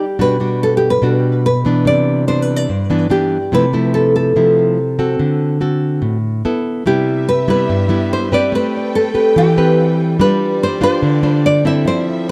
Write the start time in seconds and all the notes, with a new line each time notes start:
Already playing: G3 G4
0.19 B2 G3 D4 F#4 B4
0.40 G3 D4 F#4
0.63 A4
0.77 G4
0.90 B4
1.02 B2 G3 D4 F#4
1.46 B4
1.65 E3 B3 D4
1.85 C3 D5
2.28 E3 B3 D4 C5
2.42 B4
2.56 D5
2.69 G2
2.90 E3 B3 D4
3.10 E3 B3 D4 G4
3.52 C3 F3 A3 E4 B4
3.73 F3 A3 E4
3.94 A4
4.16 A4
4.36 C3 F3 A3 E4
4.99 C4 F#4 A4
5.19 D3
5.61 C4 F#4 A4
6.02 A2
6.45 B3 E4 A4
6.85 C3 G3 B3 E4 G4 B4 E5
7.29 B4
7.48 G3 B3 E4 B4
7.69 G2
7.89 G3 B3 E4
8.13 C5
8.32 C4 G4 B4 D5
8.51 A3 A4 G5
8.55 B4
8.95 A4
9.14 C4 G4 B4
9.36 E3 G4
9.57 C4 G4 B4
10.16 G3 D4 F4 G4 D5
10.21 B4
10.63 C5
10.81 D4 F4 C5
11.02 D3
11.23 D4 F4 C5
11.46 D5
11.65 C4 E4 A4 E5
11.84 F3 A4 C5 E5